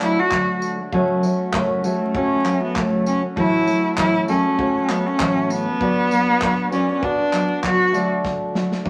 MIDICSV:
0, 0, Header, 1, 5, 480
1, 0, Start_track
1, 0, Key_signature, 3, "major"
1, 0, Tempo, 609756
1, 731, Time_signature, 4, 2, 24, 8
1, 7004, End_track
2, 0, Start_track
2, 0, Title_t, "Grand piano"
2, 0, Program_c, 0, 0
2, 0, Control_c, 0, 64, 127
2, 0, Note_on_c, 0, 57, 73
2, 0, Note_on_c, 0, 66, 66
2, 0, Note_on_c, 0, 73, 72
2, 0, Note_on_c, 0, 74, 81
2, 464, Note_off_c, 0, 57, 0
2, 469, Note_off_c, 0, 66, 0
2, 472, Note_off_c, 0, 74, 0
2, 724, Note_on_c, 0, 57, 73
2, 733, Note_on_c, 0, 66, 77
2, 741, Note_off_c, 0, 73, 0
2, 741, Note_on_c, 0, 73, 90
2, 743, Control_c, 0, 64, 0
2, 899, Control_c, 0, 64, 127
2, 1252, Note_off_c, 0, 57, 0
2, 1256, Note_off_c, 0, 66, 0
2, 1260, Note_off_c, 0, 73, 0
2, 1445, Note_on_c, 0, 57, 66
2, 1451, Note_on_c, 0, 66, 58
2, 1460, Note_on_c, 0, 73, 69
2, 1628, Note_off_c, 0, 57, 0
2, 1631, Note_off_c, 0, 66, 0
2, 1636, Note_off_c, 0, 73, 0
2, 1691, Note_on_c, 0, 57, 73
2, 1699, Note_on_c, 0, 66, 68
2, 1705, Note_on_c, 0, 73, 84
2, 2387, Note_off_c, 0, 57, 0
2, 2392, Note_off_c, 0, 66, 0
2, 2394, Note_off_c, 0, 73, 0
2, 2646, Note_on_c, 0, 57, 66
2, 2653, Note_on_c, 0, 66, 59
2, 2661, Note_on_c, 0, 73, 72
2, 2664, Control_c, 0, 64, 0
2, 2803, Control_c, 0, 64, 127
2, 3173, Note_off_c, 0, 57, 0
2, 3177, Note_off_c, 0, 66, 0
2, 3180, Note_off_c, 0, 73, 0
2, 3363, Note_on_c, 0, 57, 65
2, 3370, Note_on_c, 0, 66, 59
2, 3381, Note_on_c, 0, 69, 70
2, 3548, Note_off_c, 0, 57, 0
2, 3551, Note_off_c, 0, 66, 0
2, 3556, Note_off_c, 0, 69, 0
2, 3605, Note_on_c, 0, 57, 80
2, 3610, Note_on_c, 0, 66, 72
2, 3620, Note_on_c, 0, 73, 83
2, 4304, Note_off_c, 0, 57, 0
2, 4307, Note_off_c, 0, 66, 0
2, 4312, Note_off_c, 0, 73, 0
2, 4568, Note_on_c, 0, 59, 68
2, 4577, Note_on_c, 0, 66, 63
2, 4582, Control_c, 0, 64, 0
2, 4585, Note_on_c, 0, 74, 76
2, 4732, Control_c, 0, 64, 127
2, 5093, Note_off_c, 0, 59, 0
2, 5098, Note_off_c, 0, 66, 0
2, 5102, Note_off_c, 0, 74, 0
2, 5283, Note_on_c, 0, 59, 68
2, 5290, Note_on_c, 0, 66, 57
2, 5298, Note_on_c, 0, 74, 77
2, 5467, Note_off_c, 0, 59, 0
2, 5470, Note_off_c, 0, 66, 0
2, 5475, Note_off_c, 0, 74, 0
2, 5525, Note_on_c, 0, 59, 79
2, 5534, Note_on_c, 0, 66, 68
2, 5539, Note_on_c, 0, 74, 78
2, 6223, Note_off_c, 0, 59, 0
2, 6228, Note_off_c, 0, 66, 0
2, 6230, Note_off_c, 0, 74, 0
2, 6240, Note_on_c, 0, 57, 77
2, 6248, Note_on_c, 0, 66, 69
2, 6256, Note_on_c, 0, 74, 82
2, 6262, Control_c, 0, 64, 0
2, 6422, Control_c, 0, 64, 127
2, 7004, Note_off_c, 0, 57, 0
2, 7004, Note_off_c, 0, 66, 0
2, 7004, Note_off_c, 0, 74, 0
2, 7004, End_track
3, 0, Start_track
3, 0, Title_t, "Cello"
3, 0, Program_c, 1, 42
3, 26, Note_on_c, 1, 64, 89
3, 154, Note_on_c, 1, 66, 82
3, 166, Note_off_c, 1, 64, 0
3, 497, Note_off_c, 1, 66, 0
3, 1459, Note_on_c, 1, 57, 75
3, 1697, Note_on_c, 1, 61, 87
3, 1709, Note_off_c, 1, 57, 0
3, 2067, Note_off_c, 1, 61, 0
3, 2070, Note_on_c, 1, 59, 78
3, 2180, Note_on_c, 1, 57, 88
3, 2192, Note_off_c, 1, 59, 0
3, 2412, Note_off_c, 1, 57, 0
3, 2417, Note_on_c, 1, 61, 86
3, 2524, Note_off_c, 1, 61, 0
3, 2655, Note_on_c, 1, 64, 104
3, 3102, Note_off_c, 1, 64, 0
3, 3133, Note_on_c, 1, 64, 94
3, 3356, Note_off_c, 1, 64, 0
3, 3374, Note_on_c, 1, 61, 87
3, 3852, Note_on_c, 1, 59, 82
3, 3864, Note_off_c, 1, 61, 0
3, 3987, Note_on_c, 1, 61, 93
3, 3999, Note_off_c, 1, 59, 0
3, 4333, Note_on_c, 1, 59, 120
3, 4345, Note_off_c, 1, 61, 0
3, 5289, Note_off_c, 1, 59, 0
3, 5294, Note_on_c, 1, 61, 85
3, 5538, Note_on_c, 1, 62, 93
3, 5550, Note_off_c, 1, 61, 0
3, 6014, Note_off_c, 1, 62, 0
3, 6025, Note_on_c, 1, 66, 97
3, 6364, Note_off_c, 1, 66, 0
3, 7004, End_track
4, 0, Start_track
4, 0, Title_t, "Steel-string acoustic guitar"
4, 0, Program_c, 2, 25
4, 7, Note_on_c, 2, 54, 56
4, 19, Note_on_c, 2, 57, 55
4, 28, Note_on_c, 2, 62, 59
4, 36, Note_on_c, 2, 66, 63
4, 129, Note_off_c, 2, 66, 0
4, 138, Note_on_c, 2, 66, 50
4, 141, Note_off_c, 2, 54, 0
4, 146, Note_off_c, 2, 62, 0
4, 147, Note_off_c, 2, 57, 0
4, 155, Note_on_c, 2, 62, 48
4, 165, Note_on_c, 2, 57, 41
4, 249, Note_off_c, 2, 66, 0
4, 250, Note_off_c, 2, 57, 0
4, 250, Note_on_c, 2, 50, 71
4, 255, Note_on_c, 2, 54, 71
4, 257, Note_off_c, 2, 62, 0
4, 260, Note_on_c, 2, 57, 82
4, 265, Note_on_c, 2, 62, 80
4, 269, Note_on_c, 2, 66, 78
4, 604, Note_off_c, 2, 66, 0
4, 614, Note_on_c, 2, 66, 57
4, 623, Note_off_c, 2, 50, 0
4, 623, Note_off_c, 2, 62, 0
4, 626, Note_off_c, 2, 54, 0
4, 628, Note_off_c, 2, 57, 0
4, 632, Note_on_c, 2, 62, 47
4, 640, Note_on_c, 2, 57, 45
4, 726, Note_on_c, 2, 42, 83
4, 727, Note_off_c, 2, 66, 0
4, 729, Note_off_c, 2, 57, 0
4, 731, Note_on_c, 2, 49, 88
4, 735, Note_on_c, 2, 54, 99
4, 736, Note_off_c, 2, 62, 0
4, 738, Note_on_c, 2, 57, 102
4, 744, Note_on_c, 2, 61, 103
4, 745, Note_on_c, 2, 66, 104
4, 955, Note_off_c, 2, 54, 0
4, 964, Note_off_c, 2, 57, 0
4, 965, Note_on_c, 2, 54, 68
4, 969, Note_off_c, 2, 42, 0
4, 971, Note_off_c, 2, 49, 0
4, 973, Note_off_c, 2, 61, 0
4, 973, Note_on_c, 2, 57, 68
4, 979, Note_off_c, 2, 66, 0
4, 983, Note_on_c, 2, 61, 62
4, 989, Note_on_c, 2, 66, 74
4, 1208, Note_on_c, 2, 42, 85
4, 1209, Note_off_c, 2, 54, 0
4, 1213, Note_off_c, 2, 57, 0
4, 1213, Note_on_c, 2, 49, 77
4, 1217, Note_off_c, 2, 61, 0
4, 1218, Note_off_c, 2, 66, 0
4, 1220, Note_on_c, 2, 54, 87
4, 1221, Note_on_c, 2, 57, 91
4, 1226, Note_on_c, 2, 61, 89
4, 1227, Note_on_c, 2, 66, 99
4, 1435, Note_off_c, 2, 54, 0
4, 1444, Note_on_c, 2, 54, 59
4, 1448, Note_off_c, 2, 57, 0
4, 1450, Note_off_c, 2, 42, 0
4, 1453, Note_off_c, 2, 49, 0
4, 1453, Note_off_c, 2, 61, 0
4, 1457, Note_on_c, 2, 57, 63
4, 1460, Note_off_c, 2, 66, 0
4, 1463, Note_on_c, 2, 61, 67
4, 1471, Note_on_c, 2, 66, 69
4, 1569, Note_off_c, 2, 66, 0
4, 1578, Note_on_c, 2, 66, 53
4, 1580, Note_off_c, 2, 54, 0
4, 1580, Note_off_c, 2, 61, 0
4, 1587, Note_off_c, 2, 57, 0
4, 1589, Note_on_c, 2, 61, 57
4, 1599, Note_on_c, 2, 57, 42
4, 1607, Note_on_c, 2, 54, 42
4, 1810, Note_off_c, 2, 66, 0
4, 1819, Note_on_c, 2, 66, 57
4, 1820, Note_off_c, 2, 61, 0
4, 1827, Note_off_c, 2, 57, 0
4, 1829, Note_on_c, 2, 61, 54
4, 1836, Note_off_c, 2, 54, 0
4, 1836, Note_on_c, 2, 57, 45
4, 1846, Note_on_c, 2, 54, 44
4, 1914, Note_off_c, 2, 54, 0
4, 1924, Note_off_c, 2, 57, 0
4, 1924, Note_on_c, 2, 54, 57
4, 1930, Note_off_c, 2, 66, 0
4, 1934, Note_on_c, 2, 57, 62
4, 1935, Note_off_c, 2, 61, 0
4, 1945, Note_on_c, 2, 61, 62
4, 1952, Note_on_c, 2, 66, 65
4, 2052, Note_off_c, 2, 66, 0
4, 2060, Note_off_c, 2, 54, 0
4, 2061, Note_on_c, 2, 66, 55
4, 2062, Note_off_c, 2, 61, 0
4, 2065, Note_off_c, 2, 57, 0
4, 2071, Note_on_c, 2, 61, 45
4, 2081, Note_on_c, 2, 57, 44
4, 2089, Note_on_c, 2, 54, 44
4, 2170, Note_off_c, 2, 54, 0
4, 2170, Note_on_c, 2, 42, 68
4, 2171, Note_off_c, 2, 66, 0
4, 2173, Note_off_c, 2, 57, 0
4, 2176, Note_off_c, 2, 61, 0
4, 2177, Note_on_c, 2, 49, 71
4, 2179, Note_on_c, 2, 54, 77
4, 2182, Note_on_c, 2, 57, 81
4, 2188, Note_on_c, 2, 61, 75
4, 2190, Note_on_c, 2, 66, 77
4, 2526, Note_off_c, 2, 66, 0
4, 2535, Note_on_c, 2, 66, 57
4, 2536, Note_off_c, 2, 61, 0
4, 2543, Note_off_c, 2, 42, 0
4, 2545, Note_off_c, 2, 57, 0
4, 2545, Note_on_c, 2, 61, 53
4, 2547, Note_off_c, 2, 49, 0
4, 2548, Note_off_c, 2, 54, 0
4, 2555, Note_on_c, 2, 57, 48
4, 2561, Note_on_c, 2, 54, 45
4, 2639, Note_off_c, 2, 54, 0
4, 2642, Note_on_c, 2, 45, 87
4, 2644, Note_off_c, 2, 57, 0
4, 2646, Note_on_c, 2, 52, 79
4, 2647, Note_off_c, 2, 61, 0
4, 2648, Note_off_c, 2, 66, 0
4, 2649, Note_on_c, 2, 54, 81
4, 2654, Note_on_c, 2, 57, 94
4, 2657, Note_on_c, 2, 61, 82
4, 2659, Note_on_c, 2, 66, 89
4, 2876, Note_off_c, 2, 54, 0
4, 2885, Note_off_c, 2, 57, 0
4, 2886, Note_on_c, 2, 54, 58
4, 2887, Note_off_c, 2, 45, 0
4, 2889, Note_off_c, 2, 52, 0
4, 2892, Note_off_c, 2, 61, 0
4, 2894, Note_on_c, 2, 57, 65
4, 2896, Note_off_c, 2, 66, 0
4, 2901, Note_on_c, 2, 61, 61
4, 2911, Note_on_c, 2, 66, 66
4, 3129, Note_off_c, 2, 54, 0
4, 3130, Note_off_c, 2, 57, 0
4, 3130, Note_on_c, 2, 45, 73
4, 3134, Note_on_c, 2, 52, 80
4, 3137, Note_off_c, 2, 61, 0
4, 3138, Note_on_c, 2, 54, 80
4, 3139, Note_off_c, 2, 66, 0
4, 3140, Note_on_c, 2, 57, 76
4, 3146, Note_on_c, 2, 61, 90
4, 3149, Note_on_c, 2, 66, 78
4, 3359, Note_off_c, 2, 54, 0
4, 3368, Note_on_c, 2, 54, 62
4, 3369, Note_off_c, 2, 57, 0
4, 3371, Note_off_c, 2, 45, 0
4, 3373, Note_off_c, 2, 52, 0
4, 3377, Note_off_c, 2, 61, 0
4, 3378, Note_on_c, 2, 57, 60
4, 3381, Note_off_c, 2, 66, 0
4, 3387, Note_on_c, 2, 61, 68
4, 3394, Note_on_c, 2, 66, 69
4, 3497, Note_off_c, 2, 66, 0
4, 3502, Note_off_c, 2, 54, 0
4, 3506, Note_on_c, 2, 66, 53
4, 3507, Note_off_c, 2, 57, 0
4, 3508, Note_off_c, 2, 61, 0
4, 3518, Note_on_c, 2, 61, 48
4, 3526, Note_on_c, 2, 57, 48
4, 3534, Note_on_c, 2, 54, 45
4, 3736, Note_off_c, 2, 66, 0
4, 3745, Note_on_c, 2, 66, 57
4, 3746, Note_off_c, 2, 61, 0
4, 3755, Note_off_c, 2, 57, 0
4, 3756, Note_on_c, 2, 61, 49
4, 3759, Note_off_c, 2, 54, 0
4, 3764, Note_on_c, 2, 57, 48
4, 3773, Note_on_c, 2, 54, 44
4, 3840, Note_off_c, 2, 54, 0
4, 3849, Note_on_c, 2, 54, 57
4, 3851, Note_off_c, 2, 57, 0
4, 3853, Note_off_c, 2, 66, 0
4, 3858, Note_off_c, 2, 61, 0
4, 3861, Note_on_c, 2, 57, 57
4, 3869, Note_on_c, 2, 61, 59
4, 3876, Note_on_c, 2, 66, 62
4, 3972, Note_off_c, 2, 66, 0
4, 3982, Note_on_c, 2, 66, 52
4, 3983, Note_off_c, 2, 54, 0
4, 3984, Note_off_c, 2, 61, 0
4, 3988, Note_off_c, 2, 57, 0
4, 3994, Note_on_c, 2, 61, 46
4, 4002, Note_on_c, 2, 57, 46
4, 4009, Note_on_c, 2, 54, 40
4, 4091, Note_off_c, 2, 54, 0
4, 4091, Note_off_c, 2, 66, 0
4, 4091, Note_on_c, 2, 45, 80
4, 4095, Note_off_c, 2, 57, 0
4, 4097, Note_off_c, 2, 61, 0
4, 4099, Note_on_c, 2, 52, 83
4, 4101, Note_on_c, 2, 54, 74
4, 4105, Note_on_c, 2, 57, 81
4, 4106, Note_on_c, 2, 61, 82
4, 4111, Note_on_c, 2, 66, 81
4, 4454, Note_off_c, 2, 66, 0
4, 4463, Note_off_c, 2, 45, 0
4, 4464, Note_on_c, 2, 66, 51
4, 4466, Note_off_c, 2, 61, 0
4, 4467, Note_off_c, 2, 52, 0
4, 4468, Note_off_c, 2, 54, 0
4, 4470, Note_off_c, 2, 57, 0
4, 4475, Note_on_c, 2, 61, 51
4, 4483, Note_on_c, 2, 57, 51
4, 4490, Note_on_c, 2, 54, 46
4, 4566, Note_off_c, 2, 54, 0
4, 4570, Note_on_c, 2, 47, 83
4, 4572, Note_off_c, 2, 66, 0
4, 4575, Note_on_c, 2, 54, 83
4, 4577, Note_off_c, 2, 61, 0
4, 4578, Note_off_c, 2, 57, 0
4, 4581, Note_on_c, 2, 59, 82
4, 4586, Note_on_c, 2, 62, 83
4, 4588, Note_on_c, 2, 66, 99
4, 4801, Note_off_c, 2, 54, 0
4, 4811, Note_off_c, 2, 47, 0
4, 4811, Note_off_c, 2, 59, 0
4, 4811, Note_on_c, 2, 54, 61
4, 4819, Note_off_c, 2, 62, 0
4, 4820, Note_off_c, 2, 66, 0
4, 4820, Note_on_c, 2, 59, 63
4, 4827, Note_on_c, 2, 62, 61
4, 4839, Note_on_c, 2, 66, 68
4, 5048, Note_off_c, 2, 54, 0
4, 5052, Note_on_c, 2, 47, 92
4, 5053, Note_off_c, 2, 59, 0
4, 5057, Note_off_c, 2, 62, 0
4, 5057, Note_on_c, 2, 54, 91
4, 5061, Note_off_c, 2, 66, 0
4, 5063, Note_on_c, 2, 59, 93
4, 5066, Note_on_c, 2, 62, 98
4, 5071, Note_on_c, 2, 66, 89
4, 5279, Note_off_c, 2, 54, 0
4, 5288, Note_on_c, 2, 54, 58
4, 5290, Note_off_c, 2, 59, 0
4, 5291, Note_off_c, 2, 47, 0
4, 5296, Note_off_c, 2, 62, 0
4, 5299, Note_on_c, 2, 59, 66
4, 5301, Note_off_c, 2, 66, 0
4, 5306, Note_on_c, 2, 62, 62
4, 5315, Note_on_c, 2, 66, 63
4, 5406, Note_off_c, 2, 66, 0
4, 5416, Note_on_c, 2, 66, 55
4, 5422, Note_off_c, 2, 54, 0
4, 5422, Note_off_c, 2, 62, 0
4, 5427, Note_off_c, 2, 59, 0
4, 5431, Note_on_c, 2, 62, 51
4, 5442, Note_on_c, 2, 59, 45
4, 5651, Note_off_c, 2, 66, 0
4, 5660, Note_on_c, 2, 66, 51
4, 5663, Note_off_c, 2, 62, 0
4, 5672, Note_off_c, 2, 59, 0
4, 5673, Note_on_c, 2, 62, 49
4, 5685, Note_on_c, 2, 59, 45
4, 5765, Note_off_c, 2, 59, 0
4, 5766, Note_on_c, 2, 54, 58
4, 5770, Note_off_c, 2, 66, 0
4, 5775, Note_on_c, 2, 59, 54
4, 5776, Note_off_c, 2, 62, 0
4, 5784, Note_on_c, 2, 62, 68
4, 5794, Note_on_c, 2, 66, 59
4, 5887, Note_off_c, 2, 66, 0
4, 5896, Note_on_c, 2, 66, 51
4, 5900, Note_off_c, 2, 54, 0
4, 5901, Note_off_c, 2, 62, 0
4, 5905, Note_off_c, 2, 59, 0
4, 5911, Note_on_c, 2, 62, 45
4, 5923, Note_on_c, 2, 59, 43
4, 6004, Note_off_c, 2, 59, 0
4, 6004, Note_on_c, 2, 47, 77
4, 6007, Note_off_c, 2, 66, 0
4, 6011, Note_off_c, 2, 62, 0
4, 6013, Note_on_c, 2, 54, 80
4, 6013, Note_on_c, 2, 59, 84
4, 6021, Note_on_c, 2, 62, 82
4, 6022, Note_on_c, 2, 66, 80
4, 6238, Note_off_c, 2, 54, 0
4, 6239, Note_off_c, 2, 47, 0
4, 6242, Note_on_c, 2, 50, 75
4, 6247, Note_on_c, 2, 54, 70
4, 6248, Note_off_c, 2, 59, 0
4, 6249, Note_off_c, 2, 62, 0
4, 6250, Note_off_c, 2, 66, 0
4, 6252, Note_on_c, 2, 57, 69
4, 6258, Note_on_c, 2, 62, 76
4, 6260, Note_on_c, 2, 66, 77
4, 6714, Note_off_c, 2, 54, 0
4, 6718, Note_on_c, 2, 54, 62
4, 6725, Note_off_c, 2, 57, 0
4, 6726, Note_off_c, 2, 50, 0
4, 6728, Note_off_c, 2, 62, 0
4, 6728, Note_on_c, 2, 57, 69
4, 6737, Note_on_c, 2, 62, 64
4, 6742, Note_off_c, 2, 66, 0
4, 6745, Note_on_c, 2, 66, 74
4, 6957, Note_off_c, 2, 54, 0
4, 6961, Note_on_c, 2, 50, 81
4, 6962, Note_off_c, 2, 57, 0
4, 6967, Note_off_c, 2, 62, 0
4, 6967, Note_on_c, 2, 54, 93
4, 6970, Note_off_c, 2, 66, 0
4, 6972, Note_on_c, 2, 57, 80
4, 6977, Note_on_c, 2, 62, 94
4, 6979, Note_on_c, 2, 66, 95
4, 7004, Note_off_c, 2, 50, 0
4, 7004, Note_off_c, 2, 54, 0
4, 7004, Note_off_c, 2, 57, 0
4, 7004, Note_off_c, 2, 62, 0
4, 7004, Note_off_c, 2, 66, 0
4, 7004, End_track
5, 0, Start_track
5, 0, Title_t, "Drums"
5, 7, Note_on_c, 9, 39, 86
5, 8, Note_on_c, 9, 54, 59
5, 86, Note_off_c, 9, 39, 0
5, 87, Note_off_c, 9, 54, 0
5, 246, Note_on_c, 9, 39, 113
5, 249, Note_on_c, 9, 36, 108
5, 325, Note_off_c, 9, 39, 0
5, 327, Note_off_c, 9, 36, 0
5, 488, Note_on_c, 9, 54, 71
5, 566, Note_off_c, 9, 54, 0
5, 729, Note_on_c, 9, 36, 101
5, 808, Note_off_c, 9, 36, 0
5, 969, Note_on_c, 9, 54, 60
5, 1047, Note_off_c, 9, 54, 0
5, 1206, Note_on_c, 9, 39, 104
5, 1210, Note_on_c, 9, 36, 110
5, 1284, Note_off_c, 9, 39, 0
5, 1289, Note_off_c, 9, 36, 0
5, 1448, Note_on_c, 9, 54, 65
5, 1526, Note_off_c, 9, 54, 0
5, 1690, Note_on_c, 9, 36, 111
5, 1768, Note_off_c, 9, 36, 0
5, 1931, Note_on_c, 9, 39, 86
5, 1933, Note_on_c, 9, 54, 62
5, 2010, Note_off_c, 9, 39, 0
5, 2011, Note_off_c, 9, 54, 0
5, 2171, Note_on_c, 9, 39, 104
5, 2173, Note_on_c, 9, 36, 107
5, 2249, Note_off_c, 9, 39, 0
5, 2251, Note_off_c, 9, 36, 0
5, 2412, Note_on_c, 9, 54, 71
5, 2490, Note_off_c, 9, 54, 0
5, 2653, Note_on_c, 9, 36, 102
5, 2731, Note_off_c, 9, 36, 0
5, 2892, Note_on_c, 9, 54, 59
5, 2971, Note_off_c, 9, 54, 0
5, 3129, Note_on_c, 9, 39, 114
5, 3133, Note_on_c, 9, 36, 104
5, 3208, Note_off_c, 9, 39, 0
5, 3212, Note_off_c, 9, 36, 0
5, 3371, Note_on_c, 9, 54, 65
5, 3450, Note_off_c, 9, 54, 0
5, 3611, Note_on_c, 9, 36, 112
5, 3690, Note_off_c, 9, 36, 0
5, 3851, Note_on_c, 9, 39, 84
5, 3852, Note_on_c, 9, 54, 64
5, 3929, Note_off_c, 9, 39, 0
5, 3931, Note_off_c, 9, 54, 0
5, 4091, Note_on_c, 9, 39, 114
5, 4093, Note_on_c, 9, 36, 113
5, 4170, Note_off_c, 9, 39, 0
5, 4172, Note_off_c, 9, 36, 0
5, 4331, Note_on_c, 9, 54, 69
5, 4410, Note_off_c, 9, 54, 0
5, 4572, Note_on_c, 9, 36, 106
5, 4651, Note_off_c, 9, 36, 0
5, 4811, Note_on_c, 9, 54, 61
5, 4890, Note_off_c, 9, 54, 0
5, 5049, Note_on_c, 9, 39, 109
5, 5054, Note_on_c, 9, 36, 110
5, 5128, Note_off_c, 9, 39, 0
5, 5132, Note_off_c, 9, 36, 0
5, 5291, Note_on_c, 9, 54, 68
5, 5370, Note_off_c, 9, 54, 0
5, 5531, Note_on_c, 9, 36, 109
5, 5610, Note_off_c, 9, 36, 0
5, 5772, Note_on_c, 9, 39, 85
5, 5773, Note_on_c, 9, 54, 59
5, 5850, Note_off_c, 9, 39, 0
5, 5852, Note_off_c, 9, 54, 0
5, 6011, Note_on_c, 9, 39, 110
5, 6012, Note_on_c, 9, 36, 107
5, 6090, Note_off_c, 9, 39, 0
5, 6091, Note_off_c, 9, 36, 0
5, 6253, Note_on_c, 9, 54, 70
5, 6332, Note_off_c, 9, 54, 0
5, 6491, Note_on_c, 9, 36, 101
5, 6492, Note_on_c, 9, 38, 55
5, 6570, Note_off_c, 9, 36, 0
5, 6571, Note_off_c, 9, 38, 0
5, 6733, Note_on_c, 9, 38, 62
5, 6811, Note_off_c, 9, 38, 0
5, 6863, Note_on_c, 9, 38, 53
5, 6942, Note_off_c, 9, 38, 0
5, 6970, Note_on_c, 9, 48, 67
5, 6971, Note_on_c, 9, 36, 105
5, 7004, Note_off_c, 9, 36, 0
5, 7004, Note_off_c, 9, 48, 0
5, 7004, End_track
0, 0, End_of_file